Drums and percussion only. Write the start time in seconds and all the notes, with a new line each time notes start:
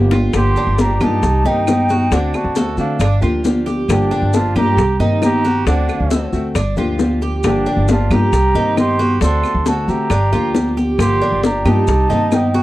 0.11 low bongo, high conga, maracas
0.33 high bongo, claves, maracas
0.56 high bongo, high conga, maracas
0.78 high bongo, high conga, maracas
1.01 high conga, low conga, claves, maracas
1.23 high bongo, high conga, maracas
1.45 high bongo, high conga, maracas
1.67 high bongo, low bongo, high conga, claves, maracas
1.89 high bongo, high conga, maracas
2.12 high bongo, high conga, maracas
2.34 high bongo, high conga, claves, maracas
2.56 high bongo, high conga, maracas
2.77 maracas
3.00 high bongo, high conga, claves, maracas
3.22 high bongo, high conga, maracas
3.45 high bongo, low bongo, high conga, maracas
3.67 high bongo, high conga, maracas
3.89 high bongo, high conga, claves, maracas
4.11 high bongo, high conga, maracas
4.33 high bongo, high conga, maracas
4.56 high conga, low conga, claves, maracas
4.78 high bongo, high conga, maracas
5.00 high bongo, high conga, maracas
5.22 high bongo, low bongo, high conga, claves, maracas
5.45 high bongo, high conga, maracas
5.67 high bongo, high conga, maracas
5.89 high bongo, high conga, claves, maracas
6.11 high bongo, high conga, maracas
6.33 maracas
6.55 high bongo, high conga, claves, maracas
6.77 high bongo, high conga, maracas
6.99 high bongo, low bongo, high conga, maracas
7.22 high bongo, maracas
7.43 high bongo, high conga, claves, maracas
7.66 high bongo, high conga, maracas
7.88 high bongo, high conga, maracas
8.11 high conga, low conga, claves, maracas
8.33 high bongo, high conga, maracas
8.55 high bongo, high conga, maracas
8.77 high bongo, low bongo, high conga, claves, maracas
9.00 high bongo, high conga, maracas
9.21 high bongo, high conga, maracas
9.43 high bongo, high conga, claves, maracas
9.66 high bongo, high conga, maracas
9.89 maracas
10.10 high bongo, high conga, claves, maracas
10.33 high bongo, high conga, maracas
10.55 high bongo, low bongo, high conga, maracas
10.77 high bongo, high conga, maracas
10.99 high bongo, claves, maracas
11.21 high bongo, high conga, maracas
11.43 high bongo, high conga, maracas
11.66 high conga, low conga, claves, maracas
11.87 high bongo, high conga, maracas
12.10 high bongo, high conga, maracas
12.32 high bongo, low bongo, high conga, claves, maracas
12.54 high bongo, high conga, maracas